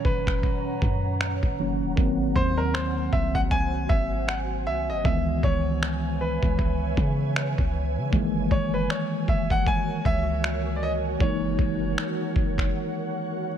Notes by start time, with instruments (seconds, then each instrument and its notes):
Already playing: tine electric piano A#2 D#3 F#3 C#4, ambient pad C#4 C#5 F#5 A#5
0.05 808-style bass F#1, grand piano B4, kick
0.27 finger snap, kick
0.43 kick
0.82 808-style bass F#2, kick
1.21 finger snap
1.43 808-style bass F#1, kick
1.59 tine electric piano D#3 F#3 A#3 C#4
1.81 808-style bass E1
1.96 808-style bass G#1, tine electric piano D#3 F#3 A#3, ambient pad F#4 C5 G#5, kick
2.00 tine electric piano C4
2.36 808-style bass D#2, grand piano C5, kick
2.58 grand piano A#4
2.74 grand piano C5, finger snap
3.13 808-style bass C2, grand piano E5, kick
3.35 grand piano F#5, kick
3.51 grand piano G#5, kick
3.89 808-style bass G#1, grand piano E5, kick
4.28 grand piano F#5, finger snap
4.67 808-style bass C2, grand piano E5
4.89 808-style bass G#1, grand piano D#5
5.04 808-style bass C#2, tine electric piano E3 G#3 B3, ambient pad B4 C#5 E5, grand piano E5, kick
5.08 tine electric piano D#3
5.43 808-style bass C#2, grand piano C#5, kick
5.83 finger snap
6.21 grand piano B4
6.43 808-style bass C#2, kick
6.59 kick
6.97 808-style bass C#3, kick
7.36 finger snap
7.58 808-style bass C#2, kick
7.97 808-style bass C#3
8.11 808-style bass F#1, tine electric piano E3 G#3 A#3, ambient pad F#4 A#4 C#5, kick
8.16 tine electric piano D#3
8.51 808-style bass F#1, grand piano C#5, kick
8.74 grand piano B4
8.90 grand piano C#5, finger snap
9.28 808-style bass F#1, grand piano E5, kick
9.50 grand piano F#5, kick
9.67 grand piano G#5, kick
10.05 808-style bass C#2, grand piano E5, kick
10.44 finger snap
10.76 grand piano D5
10.83 grand piano D#5
11.19 808-style bass F#1, tine electric piano E3 G#3 A#3, grand piano C#5, ambient pad F#5, kick
11.23 tine electric piano D#4
11.59 808-style bass F#1, kick
11.98 finger snap
12.36 808-style bass F#1, kick
12.58 finger snap, kick